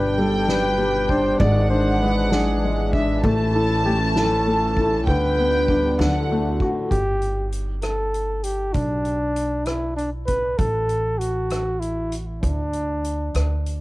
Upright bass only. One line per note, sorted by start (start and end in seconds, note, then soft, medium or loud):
0.00 1.36 G1 loud
1.40 3.20 G#1 loud
3.24 5.08 A1 loud
5.08 5.95 D2 loud
5.99 6.57 D2 loud
6.91 8.71 G1 medium
8.75 10.55 B1 medium
10.59 12.39 A1 medium
12.43 13.31 D2 medium
13.35 13.81 D2 medium